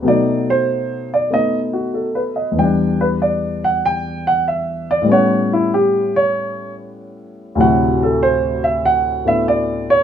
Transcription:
grand piano
0.02 B2 F#3 A3
0.07 D#4 D5
0.50 C5
1.14 D5
1.30 A3 B3 D#4 D#5
1.73 F#4
1.94 A4
2.15 B4
2.36 D#5
2.52 E2
2.56 E3 G3 G5
2.63 D4
3.01 B4
3.22 D5
3.64 F#5
3.85 G5
4.27 F#5
4.48 E5
4.91 D5
5.02 A2 G3
5.07 B3 C#4
5.12 C#5 F#5
5.53 E4
5.74 G4
6.16 C#5
7.55 D2 A2 C3 F#3 E4
7.60 F#4 F#5
8.03 A4
8.23 C5
8.64 E5
8.85 F#5
9.25 A2 A3 B3 D4 E4 E5
9.48 D5
9.90 C#5

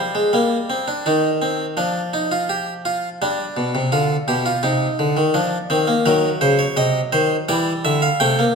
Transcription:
harpsichord
Already playing: G3 C4 C5
0.15 G#3
0.33 G3 A#3
0.70 C4
0.88 D4
1.06 D#3 D#4
1.42 C4
1.77 F3 D4
2.13 D#4
2.32 F4
2.49 G4
2.85 F4
3.22 G3 D4
3.57 B2
3.75 C3
3.92 D3 F4
4.28 B2 G4
4.46 F4
4.63 C3 D#4
4.99 D3
5.17 D#3
5.34 F3 D4
5.70 D#3 C4
5.87 A#3
6.06 D#3 F#3 A#4
6.41 C#3 C5
6.59 C#5
6.77 C3 D#5
7.12 D#3 C5
7.49 E3 G3 D5
7.85 D3 E5
8.02 F5
8.20 C3 A3 G5
8.39 A#3

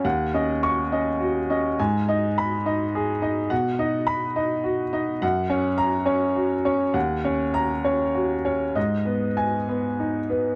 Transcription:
upright piano
0.05 D#2 F#5
0.34 C#4 D#5
0.63 C#6
0.92 C#4 D#5
1.20 F#4
1.50 C#4 D#5
1.79 G#2 G#5
2.08 D#4 D#5
2.38 B5
2.66 D#4 D#5
2.95 G#4
3.22 D#4 D#5
3.50 B2 F#5
3.79 D#4 D#5
4.07 B5
4.36 D#4 D#5
4.64 F#4
4.93 D#4 D#5
5.22 F#2 F#5
5.50 C#4 C#5
5.78 A#5
6.05 C#4 C#5
6.36 F#4
6.65 C#4 C#5
6.94 D#2 F#5
7.24 C#4 C#5
7.54 A#5
7.85 C#4 C#5
8.15 F#4
8.45 C#4 C#5
8.76 G#2 D#5
9.05 B3 B4
9.37 G#5
9.69 B3 B4
10.00 D#4
10.30 B3 B4

